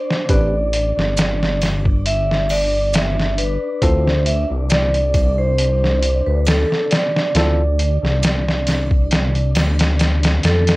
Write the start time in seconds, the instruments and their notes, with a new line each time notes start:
Already playing: synth texture D4 D5, vibraphone C5
0.11 snare
0.29 detuned saw bass A1, tine electric piano C4 D4 G4 B4, vibraphone D5, kick, closed hi-hat
0.73 closed hi-hat
0.97 detuned saw bass G1, snare
1.17 snare, closed hi-hat, maracas
1.43 snare
1.61 snare, closed hi-hat, triangle
1.85 kick
2.06 vibraphone E5, closed hi-hat
2.31 snare
2.49 vibraphone D5, open hi-hat, triangle
2.93 vibraphone E5, snare, closed hi-hat, maracas
3.20 snare
3.38 vibraphone B4, closed hi-hat
3.82 detuned saw bass D2, tine electric piano C4 E4 F4 A4, vibraphone C5, kick, closed hi-hat
4.07 snare
4.26 vibraphone E5, closed hi-hat
4.50 detuned saw bass C2
4.70 vibraphone D5, snare, closed hi-hat, maracas
4.94 closed hi-hat
5.14 kick, closed hi-hat, triangle
5.38 vibraphone C5
5.58 closed hi-hat
5.84 snare
6.03 closed hi-hat
6.26 detuned saw bass D2, vibraphone B4
6.45 vibraphone A4, snare, closed hi-hat, triangle, maracas
6.72 snare
6.91 vibraphone D5, snare, closed hi-hat
7.16 snare
7.35 detuned saw bass D2, tine electric piano C4 E4 F4 A4, snare, closed hi-hat
7.79 closed hi-hat
8.03 detuned saw bass C2, snare
8.23 snare, closed hi-hat, maracas
8.49 snare
8.67 snare, closed hi-hat, triangle
8.91 kick
9.11 snare, closed hi-hat
9.35 closed hi-hat
9.55 detuned saw bass D2, snare, closed hi-hat, triangle
9.79 snare, closed hi-hat
9.99 snare, closed hi-hat, maracas
10.23 snare, closed hi-hat
10.43 detuned saw bass F2, vibraphone A4, snare, closed hi-hat
10.67 snare, closed hi-hat